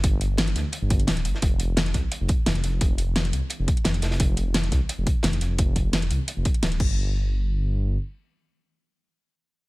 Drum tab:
CC |----------------|----------------|----------------|----------------|
HH |x-x-xxx-x-xxxxx-|x-x-xxx-x-x-xxx-|x-x-xxx-x-xxxxxx|x-x-xxx-x-x-xxx-|
SD |----ooo-----oo-o|----ooo-----ooo-|----oo------oooo|----ooo-----ooo-|
BD |o---------o-----|o-----o---o-----|o---------o-----|o-----o---o-----|

CC |--------------x-|----------------|----------------|
HH |x-x-xxx-x-xxxx--|----------------|----------------|
SD |----oo------oo--|----------------|----------------|
BD |o-o-------o---o-|----------------|----------------|